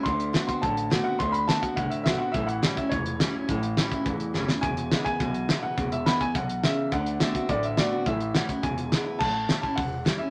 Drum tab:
CC |--------|--------|--------|--------|
HH |xxxxxxx-|xxxxxxx-|xxxxxxx-|xxxxxx--|
SD |--o---o-|--o---o-|--o---o-|--o---oo|
BD |o--oo---|o--oo---|o--oo---|o--oo---|

CC |--------|--------|--------|--------|
HH |xxxxxxx-|xxxxxxx-|xxxxxxx-|xxxxxxx-|
SD |--o---o-|--o---o-|--o---o-|--o---o-|
BD |o--oo---|o--oo---|o--oo---|o--oo---|

CC |x-------|
HH |--o-o-o-|
SD |--o---o-|
BD |o--oo---|